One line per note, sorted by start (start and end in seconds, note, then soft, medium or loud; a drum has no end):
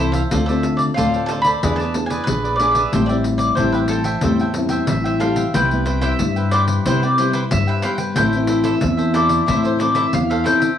0.00 0.22 C2 medium
0.00 0.29 E3 medium
0.00 0.20 C4 soft
0.00 0.14 E4 medium
0.00 0.20 E4 soft
0.00 0.14 A4 medium
0.00 0.20 A4 medium
0.00 0.15 C5 medium
0.00 0.14 E5 medium
0.12 0.31 C5 soft
0.12 0.30 E5 soft
0.12 0.21 F5 medium
0.12 pandeiro medium
0.16 0.31 A4 soft
0.31 0.88 D2 loud
0.31 0.94 D3 medium
0.31 0.43 C4 medium
0.31 0.47 F4 medium
0.31 0.43 F4 medium
0.31 0.47 A4 medium
0.31 0.43 A4 medium
0.31 0.47 C5 medium
0.31 0.48 D5 medium
0.31 pandeiro medium
0.46 0.93 C4 medium
0.46 0.93 F4 medium
0.46 0.64 C5 soft
0.46 0.63 D5 soft
0.46 0.77 E5 medium
0.46 pandeiro soft
0.51 0.93 A4 medium
0.51 0.63 A4 soft
0.63 muted cavaquinho stroke soft
0.63 pandeiro medium
0.77 0.82 D5 medium
0.77 pandeiro soft
0.94 1.53 D2 medium
0.94 1.59 A2 medium
0.94 1.39 C4 medium
0.94 1.12 F4 medium
0.94 1.40 F4 soft
0.94 1.12 A4 medium
0.94 1.40 A4 medium
0.94 1.13 C5 medium
0.94 1.26 F5 medium
0.94 pandeiro medium
0.98 1.13 D5 medium
1.14 1.29 A4 soft
1.14 1.29 C5 soft
1.14 1.29 D5 soft
1.14 pandeiro soft
1.26 1.45 F4 soft
1.26 1.45 A4 soft
1.26 1.31 A5 medium
1.26 pandeiro medium
1.30 1.45 C5 medium
1.30 1.43 D5 medium
1.42 1.60 D5 medium
1.42 1.51 B5 loud
1.42 pandeiro medium
1.46 1.62 A4 soft
1.46 1.61 C5 medium
1.63 2.19 E2 medium
1.63 2.25 E3 medium
1.63 1.82 B3 soft
1.63 1.82 D4 medium
1.63 1.78 E4 medium
1.63 1.78 G#4 medium
1.63 1.82 G#4 medium
1.63 1.78 B4 medium
1.63 1.79 D5 medium
1.63 pandeiro medium
1.76 2.06 A5 medium
1.76 pandeiro soft
1.80 1.94 G#4 soft
1.80 1.95 B4 soft
1.80 1.95 D5 soft
1.94 2.14 B3 soft
1.94 2.14 D4 soft
1.94 2.15 G#4 medium
1.94 muted cavaquinho stroke soft
1.94 pandeiro medium
2.06 2.42 D5 medium
2.06 2.24 G#5 medium
2.10 2.43 G#4 medium
2.10 2.43 B4 medium
2.10 pandeiro medium
2.24 2.55 B4 medium
2.24 pandeiro medium
2.28 2.84 A#1 medium
2.28 2.56 B3 medium
2.28 2.56 D4 medium
2.28 2.56 G#4 medium
2.44 2.60 G#4 soft
2.44 2.60 B4 soft
2.44 2.59 D5 soft
2.44 pandeiro soft
2.56 2.81 B3 soft
2.56 2.75 D5 medium
2.56 pandeiro medium
2.60 2.82 D4 soft
2.60 2.76 E4 medium
2.60 2.82 G#4 medium
2.60 2.76 G#4 medium
2.60 2.75 B4 medium
2.60 2.74 D5 medium
2.71 3.04 E5 medium
2.71 pandeiro medium
2.75 2.92 G#4 soft
2.75 2.92 B4 soft
2.75 2.91 D5 soft
2.93 3.49 A1 loud
2.93 3.56 A2 medium
2.93 3.04 G3 medium
2.93 3.05 C4 medium
2.93 3.05 E4 medium
2.93 3.08 A4 medium
2.93 3.09 C5 medium
2.93 3.09 E5 medium
2.93 3.08 G5 medium
2.93 pandeiro medium
3.06 3.54 G3 medium
3.06 3.15 D5 medium
3.06 3.25 E5 soft
3.06 3.24 G5 soft
3.06 pandeiro soft
3.10 3.54 C4 medium
3.10 3.54 E4 medium
3.10 3.25 C5 soft
3.24 muted cavaquinho stroke soft
3.24 pandeiro medium
3.38 3.55 D5 medium
3.38 pandeiro medium
3.55 4.14 A1 medium
3.55 4.21 E3 soft
3.55 4.01 G3 soft
3.55 3.74 A4 medium
3.55 3.72 C5 medium
3.55 3.74 C5 medium
3.55 pandeiro medium
3.59 4.01 C4 soft
3.59 4.01 E4 medium
3.59 3.74 E5 medium
3.59 3.73 G5 medium
3.72 3.77 B4 medium
3.72 3.90 E5 soft
3.72 3.90 G5 soft
3.72 pandeiro soft
3.77 3.90 C5 soft
3.88 5.17 A4 medium
3.88 4.06 A4 soft
3.88 4.05 C5 soft
3.88 4.04 E5 soft
3.88 4.04 G5 medium
3.88 pandeiro medium
4.04 4.22 C5 medium
4.04 4.22 E5 medium
4.04 4.22 G5 medium
4.04 pandeiro medium
4.21 4.80 E2 medium
4.21 4.86 A2 medium
4.21 4.43 G3 medium
4.21 4.43 C4 soft
4.21 4.44 E4 medium
4.21 4.39 A4 medium
4.21 4.39 C5 medium
4.21 4.40 E5 medium
4.21 4.40 G5 medium
4.21 pandeiro medium
4.39 4.54 C5 soft
4.39 4.55 E5 soft
4.39 4.55 G5 soft
4.39 pandeiro soft
4.54 5.17 G3 medium
4.54 5.17 C4 medium
4.54 5.17 E4 medium
4.54 muted cavaquinho stroke soft
4.54 pandeiro medium
4.69 5.04 C5 medium
4.69 5.04 E5 medium
4.69 5.03 G5 medium
4.69 pandeiro medium
4.87 5.45 A1 medium
4.87 5.52 E3 medium
4.87 5.04 E5 medium
4.87 pandeiro medium
5.04 5.19 C5 soft
5.04 5.20 E5 soft
5.04 5.20 E5 medium
5.04 5.20 G5 soft
5.04 pandeiro soft
5.20 5.43 G3 soft
5.20 5.44 C4 medium
5.20 5.44 E4 medium
5.20 5.36 A4 medium
5.20 5.37 C5 medium
5.20 5.36 E5 medium
5.20 5.52 F5 medium
5.20 5.35 G5 medium
5.20 pandeiro medium
5.36 5.53 C5 soft
5.36 5.53 E5 soft
5.36 5.53 G5 soft
5.36 pandeiro medium
5.54 6.11 C2 medium
5.54 6.18 C3 medium
5.54 5.65 G3 soft
5.54 5.66 B3 medium
5.54 5.84 E4 medium
5.54 5.66 E4 medium
5.54 5.86 B4 medium
5.54 5.84 C5 medium
5.54 6.01 G5 medium
5.54 5.86 G5 medium
5.54 pandeiro medium
5.71 6.16 G3 medium
5.71 6.16 B3 medium
5.71 6.16 E4 medium
5.71 pandeiro soft
5.85 6.00 E4 soft
5.85 6.01 B4 soft
5.85 6.00 C5 soft
5.85 6.01 G5 medium
5.85 pandeiro medium
6.01 6.12 E4 medium
6.01 6.12 B4 medium
6.01 6.12 C5 medium
6.01 6.49 E5 medium
6.01 6.12 G5 medium
6.01 pandeiro soft
6.19 6.76 G2 medium
6.19 6.83 G2 medium
6.19 6.81 G3 medium
6.19 6.81 B3 soft
6.19 6.81 E4 medium
6.19 pandeiro medium
6.36 6.52 B4 soft
6.36 6.51 C5 soft
6.36 6.52 G5 soft
6.36 pandeiro soft
6.51 6.84 E4 medium
6.51 6.85 B4 medium
6.51 6.85 C5 medium
6.51 6.61 D5 medium
6.51 6.85 G5 medium
6.51 pandeiro medium
6.68 pandeiro medium
6.85 7.42 C3 medium
6.85 7.49 C3 medium
6.85 7.06 G3 medium
6.85 7.06 B3 medium
6.85 7.01 E4 medium
6.85 7.06 E4 medium
6.85 7.02 B4 medium
6.85 7.01 C5 medium
6.85 7.02 C5 medium
6.85 7.02 G5 medium
6.85 pandeiro medium
7.03 7.19 B4 soft
7.03 7.18 C5 soft
7.03 7.18 D5 medium
7.03 7.18 G5 soft
7.03 pandeiro soft
7.18 7.61 G3 soft
7.18 7.61 B3 soft
7.18 7.32 E4 soft
7.18 7.61 E4 medium
7.18 7.34 B4 soft
7.18 7.33 C5 medium
7.18 7.33 C5 soft
7.18 7.33 G5 soft
7.18 pandeiro medium
7.33 7.43 E4 medium
7.33 7.39 B4 medium
7.33 7.44 B4 medium
7.33 7.44 C5 medium
7.33 7.44 G5 medium
7.33 pandeiro medium
7.51 8.14 G2 medium
7.51 7.80 G2 medium
7.51 7.68 E5 medium
7.51 pandeiro medium
7.67 7.83 B4 soft
7.67 7.82 C5 soft
7.67 7.83 E5 medium
7.67 7.83 G5 soft
7.67 pandeiro soft
7.82 8.14 G3 soft
7.82 8.15 B3 medium
7.82 7.99 E4 medium
7.82 7.98 B4 medium
7.82 7.99 C5 medium
7.82 7.92 F5 medium
7.82 7.97 G5 medium
7.82 pandeiro medium
7.98 8.15 B4 soft
7.98 8.16 C5 soft
7.98 8.15 G5 medium
7.98 pandeiro medium
8.16 8.73 A1 medium
8.16 8.80 A2 medium
8.16 8.29 E3 medium
8.16 8.29 C4 medium
8.16 8.47 E4 medium
8.16 8.29 E4 medium
8.16 8.48 A4 medium
8.16 8.49 C5 medium
8.16 8.49 E5 medium
8.16 8.63 G5 medium
8.16 pandeiro medium
8.33 8.78 E3 medium
8.33 8.79 C4 medium
8.33 8.79 E4 medium
8.33 pandeiro soft
8.47 8.62 E4 soft
8.47 8.63 A4 medium
8.47 8.63 C5 soft
8.47 8.63 E5 medium
8.47 pandeiro medium
8.63 8.74 E4 medium
8.63 8.74 A4 medium
8.63 8.74 C5 medium
8.63 8.74 E5 medium
8.63 9.11 E5 medium
8.63 pandeiro medium
8.81 9.39 E2 loud
8.81 9.45 E3 soft
8.81 9.44 C4 medium
8.81 9.44 E4 medium
8.81 pandeiro medium
8.97 9.13 A4 soft
8.97 9.14 C5 soft
8.97 9.13 E5 soft
8.97 pandeiro soft
9.14 9.45 E4 medium
9.14 9.46 A4 medium
9.14 9.47 C5 medium
9.14 9.49 D5 medium
9.14 9.47 E5 medium
9.14 pandeiro medium
9.29 pandeiro medium
9.46 10.04 A2 medium
9.46 10.11 A2 medium
9.46 9.76 E3 medium
9.46 9.77 C4 soft
9.46 9.62 E4 medium
9.46 9.77 E4 medium
9.46 9.63 A4 medium
9.46 9.63 C5 medium
9.46 9.65 E5 medium
9.46 9.62 E5 medium
9.46 pandeiro medium
9.64 9.78 A4 soft
9.64 9.79 C5 soft
9.64 9.81 C5 medium
9.64 9.79 E5 soft
9.64 pandeiro soft
9.79 10.14 E3 medium
9.79 10.23 C4 medium
9.79 9.93 E4 soft
9.79 10.24 E4 medium
9.79 9.94 A4 soft
9.79 9.94 C5 medium
9.79 9.98 D5 medium
9.79 9.95 E5 soft
9.79 pandeiro medium
9.95 10.05 E4 medium
9.95 10.05 A4 medium
9.95 10.05 C5 medium
9.95 10.06 E5 medium
9.95 10.12 E5 medium
9.95 pandeiro medium
10.13 10.42 E2 medium
10.13 10.45 E3 medium
10.13 10.30 F5 medium
10.13 pandeiro medium
10.30 10.44 A4 soft
10.30 10.45 C5 soft
10.30 10.45 E5 soft
10.30 10.46 F5 medium
10.30 pandeiro soft
10.44 10.68 E3 medium
10.44 10.68 C4 medium
10.44 10.60 E4 medium
10.44 10.68 E4 medium
10.44 10.61 A4 medium
10.44 10.60 C5 medium
10.44 10.59 E5 medium
10.44 10.77 G5 medium
10.44 pandeiro medium
10.60 10.78 A4 soft
10.60 10.77 C5 soft
10.60 10.77 E5 soft
10.60 pandeiro medium